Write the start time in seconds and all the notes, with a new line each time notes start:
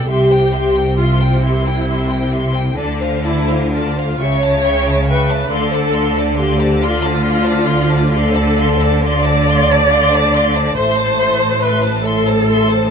0.08 C2 C3 G4 E5 C6
0.30 C5 G5
0.52 G4 E5 C6
0.75 C5 G5
0.97 F4 G4 E5 C6
1.20 C5 G5
1.43 E4 G4 E5 C6
1.65 C5 G5
1.87 G4 E5 C6
2.09 C5 G5
2.32 G4 E5 C6
2.55 C5 G5
2.77 D2 D3 A4 D5 A5
3.00 C5 F5
3.23 E4 A4 D5 A5
3.48 C5 F5
3.72 F4 A4 D5 A5
3.96 C5 F5
4.19 C#2 C#3 C#5 E5 G5 C#6
4.42 C#5 E5 A5
4.64 E5 G5 C#6
4.86 C#5 E5 A5
5.08 B4 E5 G5 C#6
5.29 C#5 E5 A5
5.50 D2 D3 A4 D5 F5 C6
5.72 C5 D5 A5
5.93 D5 F5 C6
6.16 C5 D5 A5
6.37 G4 D5 F5 C6
6.59 C5 D5 A5
6.80 F4 D5 F5 C6
7.02 C5 D5 A5
7.24 D5 F5 C6
7.44 C5 D5 A5
7.66 D5 F5 C6
7.89 C5 D5 A5
8.11 A4 D5 F5 C6
8.33 C5 D5 A5
8.57 D5 F5 C6
8.80 C5 D5 A5
9.03 D5 F5 C6
9.26 C5 D5 A5
9.48 D5 F5 C6
9.70 C5 D5 A5
9.91 D5 F5 C6
10.13 C5 D5 A5
10.33 D5 F5 C6
10.55 C5 D5 A5
10.75 A1 A2 A4 C5 E5 C6
10.97 C5 A5
11.17 A4 E5 C6
11.39 C5 A5
11.60 A4 B4 E5 C6
11.81 C5 A5
12.04 A4 E5 C6
12.26 C5 A5
12.47 A4 E5 C6
12.68 C5 A5